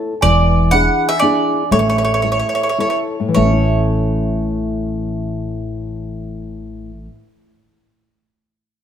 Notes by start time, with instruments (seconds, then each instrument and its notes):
Already playing: nylon-string guitar E4 A4 C#5
0.21 upright bass E1, nylon-string guitar E3, mandolin D5, celesta G#5
0.71 nylon-string guitar D4 E4 G#4, mandolin F#5, celesta B5
1.07 mandolin E5, celesta G#5
1.19 nylon-string guitar D4 E4 G#4, mandolin D5, celesta G#5
1.71 upright bass A1, nylon-string guitar A3, mandolin C#5, celesta E5
1.79 mandolin C#5, celesta E5
1.88 mandolin C#5, celesta E5
1.95 mandolin C#5, celesta E5
2.02 mandolin C#5, celesta E5
2.14 mandolin C#5
2.20 mandolin C#5, celesta E5
2.24 nylon-string guitar E4 A4 C#5, celesta E5
2.32 mandolin C#5, celesta E5
2.39 mandolin C#5
2.45 mandolin C#5, celesta E5
2.54 mandolin C#5, celesta E5
2.63 mandolin C#5
2.69 mandolin C#5, celesta E5
2.78 nylon-string guitar E4 A4 C#5, mandolin C#5
2.87 mandolin C#5, celesta E5
3.20 nylon-string guitar A2
3.28 nylon-string guitar E3
3.35 upright bass A1, nylon-string guitar A3, mandolin C#5, celesta E5
3.44 nylon-string guitar C#4
3.52 nylon-string guitar E4